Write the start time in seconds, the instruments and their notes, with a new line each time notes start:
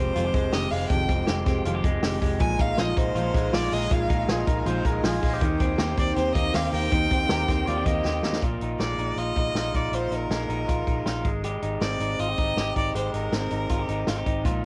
Already playing: fingered electric bass F1, clean electric guitar F2 C4 G4, steel-string acoustic guitar D#3 G#3 C4 G4, violin C5
0.14 fingered electric bass F1, steel-string acoustic guitar F2 C3 D#3 G#3 C4 G4, clean electric guitar F4, hi-hat pedal, open hi-hat
0.25 clean electric guitar G4
0.34 fingered electric bass F1, steel-string acoustic guitar D#3 G#3 C4 G4, clean electric guitar G#3, kick, hi-hat pedal, open hi-hat
0.52 fingered electric bass F1, steel-string acoustic guitar D#3 G#3 C4 G4, clean electric guitar G4, violin D#5, snare, hi-hat pedal, open hi-hat
0.71 fingered electric bass F1, steel-string acoustic guitar D#3 G#3 C4 G4, clean electric guitar G#3, violin F5, hi-hat pedal, open hi-hat
0.89 fingered electric bass F1, steel-string acoustic guitar F2 C3 D#3 G#3 C4 G4, clean electric guitar F2, violin G5, kick, hi-hat pedal, open hi-hat
1.08 fingered electric bass F1, steel-string acoustic guitar D#3 G#3 C4 G4, clean electric guitar C4, kick, hi-hat pedal, open hi-hat
1.27 fingered electric bass F1, steel-string acoustic guitar D#3 G#3 C4 G4, clean electric guitar G4, snare, hi-hat pedal, open hi-hat
1.46 fingered electric bass F1, steel-string acoustic guitar D#3 G#3 C4 G4, clean electric guitar C4, kick, snare, hi-hat pedal, open hi-hat
1.65 fingered electric bass F1, steel-string acoustic guitar F2 C3 D#3 G#3 C4 G4, clean electric guitar F4, hi-hat pedal, open hi-hat
1.75 clean electric guitar G4
1.84 fingered electric bass F1, steel-string acoustic guitar D#3 G#3 C4 G4, clean electric guitar G#3, kick, hi-hat pedal, open hi-hat
2.03 fingered electric bass F1, steel-string acoustic guitar D#3 G#3 C4 G4, clean electric guitar G4, snare, hi-hat pedal, open hi-hat
2.21 fingered electric bass F1, steel-string acoustic guitar D#3 G#3 C4 G4, clean electric guitar G#3, kick, hi-hat pedal, open hi-hat
2.40 fingered electric bass A#1, clean electric guitar A#2, steel-string acoustic guitar A#2 F3 G#3 D#4 F4, string machine F4 D#5 G#5 A#5, violin G#5, kick, hi-hat pedal, open hi-hat
2.59 fingered electric bass A#1, steel-string acoustic guitar G#3 F4, clean electric guitar D#4, violin F5, kick, hi-hat pedal, open hi-hat
2.77 fingered electric bass A#1, steel-string acoustic guitar F3 G#3 D#4 F4, clean electric guitar F4, violin D#5, snare, hi-hat pedal, open hi-hat
2.96 fingered electric bass A#1, steel-string acoustic guitar G#3 D#4 F4, clean electric guitar D#4, violin C5, kick, hi-hat pedal, open hi-hat
3.15 fingered electric bass A#1, steel-string acoustic guitar A#2 F3 G#3 D#4 F4, clean electric guitar F4, hi-hat pedal, open hi-hat
3.34 fingered electric bass A#1, clean electric guitar G#3, steel-string acoustic guitar G#3 D#4 F4, kick, hi-hat pedal, open hi-hat
3.52 fingered electric bass A#1, steel-string acoustic guitar F3 G#3 D#4 F4, clean electric guitar F4, violin D5, snare, hi-hat pedal, open hi-hat
3.71 fingered electric bass A#1, clean electric guitar G#3, steel-string acoustic guitar G#3 D#4 F4, violin D#5, hi-hat pedal, open hi-hat
3.91 fingered electric bass A#1, steel-string acoustic guitar A#2 F3 G#3 D#4 F4, clean electric guitar A#2, violin F5, kick, hi-hat pedal, open hi-hat
4.09 fingered electric bass A#1, steel-string acoustic guitar G#3 D#4, clean electric guitar D#4, kick, hi-hat pedal, open hi-hat
4.28 fingered electric bass A#1, steel-string acoustic guitar F3 G#3 D#4 F4, clean electric guitar F4, trumpet G#4, snare, hi-hat pedal, open hi-hat
4.46 fingered electric bass A#1, steel-string acoustic guitar G#3 D#4 F4, clean electric guitar D#4, trumpet A#4, kick, hi-hat pedal, open hi-hat
4.66 fingered electric bass A#1, steel-string acoustic guitar A#2 F3 G#3 D#4 F4, clean electric guitar F4, trumpet C5, hi-hat pedal, open hi-hat
4.85 fingered electric bass A#1, clean electric guitar G#3, steel-string acoustic guitar G#3 F4, trumpet A#4, kick, hi-hat pedal, open hi-hat
5.03 fingered electric bass A#1, steel-string acoustic guitar F3 G#3 D#4 F4, clean electric guitar F4, trumpet G#4, snare, hi-hat pedal, open hi-hat
5.22 fingered electric bass A#1, clean electric guitar G#3, steel-string acoustic guitar G#3 D#4, kick, hi-hat pedal, open hi-hat
5.33 trumpet G4
5.41 fingered electric bass D#2, steel-string acoustic guitar D#3 A#3 C4 G4, clean electric guitar D#3, string machine D#4 C5 G5 A#5, kick, hi-hat pedal, open hi-hat
5.59 fingered electric bass D#2, steel-string acoustic guitar A#3 C4 G4, clean electric guitar C4, kick, hi-hat pedal, open hi-hat
5.78 fingered electric bass D#2, steel-string acoustic guitar D#3 A#3 C4 G4, clean electric guitar G4, snare, hi-hat pedal, open hi-hat
5.97 fingered electric bass D#2, steel-string acoustic guitar A#3 C4 G4, clean electric guitar C4, violin D5, kick, hi-hat pedal, open hi-hat
6.16 fingered electric bass D#2, steel-string acoustic guitar D#3 A#3 C4 G4, clean electric guitar G4, violin C5, hi-hat pedal, open hi-hat
6.35 fingered electric bass D#2, clean electric guitar A#3, steel-string acoustic guitar A#3 C4 G4, violin D#5, kick, hi-hat pedal, open hi-hat
6.53 fingered electric bass D#2, steel-string acoustic guitar D#3 A#3 C4 G4, clean electric guitar G4, violin F5, snare, hi-hat pedal, open hi-hat
6.73 fingered electric bass D#2, clean electric guitar A#3, steel-string acoustic guitar A#3 C4 G4, violin G5, hi-hat pedal, open hi-hat
6.91 fingered electric bass D#2, steel-string acoustic guitar D#3 A#3 C4 G4, clean electric guitar D#3, kick, hi-hat pedal, open hi-hat
7.11 fingered electric bass D#2, steel-string acoustic guitar A#3 C4 G4, clean electric guitar C4, trumpet C5, kick, hi-hat pedal, open hi-hat
7.29 fingered electric bass D#2, steel-string acoustic guitar D#3 A#3 C4 G4, clean electric guitar G4, trumpet A#4, snare, hi-hat pedal, open hi-hat
7.47 fingered electric bass D#2, steel-string acoustic guitar A#3 C4 G4, clean electric guitar C4, trumpet C5, kick, snare, hi-hat pedal, open hi-hat
7.66 fingered electric bass D#2, steel-string acoustic guitar D#3 A#3 C4 G4, clean electric guitar F4, trumpet D5, hi-hat pedal, open hi-hat
7.77 clean electric guitar G4
7.85 fingered electric bass D#2, clean electric guitar A#3, steel-string acoustic guitar A#3 C4 G4, trumpet D#5, kick, hi-hat pedal, open hi-hat
8.05 fingered electric bass D#2, steel-string acoustic guitar D#3 A#3 C4 G4, clean electric guitar G4, snare
8.23 fingered electric bass D#2, clean electric guitar A#3, steel-string acoustic guitar A#3 C4 G4, snare
8.33 snare
8.42 fingered electric bass A#1, clean electric guitar A#2 F4, kick, closed hi-hat
8.60 fingered electric bass A#1, clean electric guitar D#4, closed hi-hat
8.79 fingered electric bass A#1, clean electric guitar G#3, violin D5, snare, closed hi-hat
8.98 fingered electric bass A#1, clean electric guitar D#4, closed hi-hat
9.16 fingered electric bass A#1, clean electric guitar F4, violin D#5, closed hi-hat
9.36 fingered electric bass A#1, clean electric guitar D#4, kick, closed hi-hat
9.54 fingered electric bass A#1, clean electric guitar F4, snare, closed hi-hat
9.74 fingered electric bass A#1, clean electric guitar D#4, violin D5, kick, closed hi-hat
9.92 fingered electric bass A#1, clean electric guitar A#2 F4, violin C5, closed hi-hat
10.11 fingered electric bass A#1, clean electric guitar D#4, closed hi-hat
10.15 violin A#4
10.29 fingered electric bass A#1, clean electric guitar G#3, snare, closed hi-hat
10.49 fingered electric bass A#1, clean electric guitar D#4, closed hi-hat
10.68 fingered electric bass A#1, clean electric guitar F4, kick, closed hi-hat
10.87 fingered electric bass A#1, clean electric guitar D#4, kick, closed hi-hat
11.05 fingered electric bass A#1, clean electric guitar F4, snare, closed hi-hat
11.25 fingered electric bass G#1, clean electric guitar G#3, kick, closed hi-hat
11.44 clean electric guitar G#3 G4, closed hi-hat
11.62 fingered electric bass G#1, clean electric guitar D#4, closed hi-hat
11.81 fingered electric bass G#1, clean electric guitar C4, violin D5, snare, closed hi-hat
11.99 fingered electric bass G#1, clean electric guitar D#4, closed hi-hat
12.19 fingered electric bass G#1, clean electric guitar F4, violin D#5, closed hi-hat
12.29 clean electric guitar G4
12.38 fingered electric bass G#1, clean electric guitar D#4, kick, closed hi-hat
12.56 fingered electric bass G#1, clean electric guitar G4, snare, closed hi-hat
12.76 fingered electric bass G#1, clean electric guitar D#4, violin D5, kick, closed hi-hat
12.95 fingered electric bass G#1, clean electric guitar G#3 G4, violin C5, closed hi-hat
13.13 fingered electric bass G#1, clean electric guitar D#4, violin A#4, closed hi-hat
13.32 fingered electric bass G#1, clean electric guitar C4, snare, closed hi-hat
13.51 fingered electric bass G#1, clean electric guitar D#4, closed hi-hat
13.69 fingered electric bass G#1, clean electric guitar F4, kick, closed hi-hat
13.79 clean electric guitar G4
13.88 fingered electric bass G#1, clean electric guitar D#4, closed hi-hat
14.07 fingered electric bass G#1, clean electric guitar F4, snare, closed hi-hat
14.16 clean electric guitar G4
14.26 fingered electric bass G#1, clean electric guitar D#4, kick, closed hi-hat
14.44 fingered electric bass A#1, steel-string acoustic guitar A#2 F3 G#3 D#4 F4, clean electric guitar A#2 F4, kick, closed hi-hat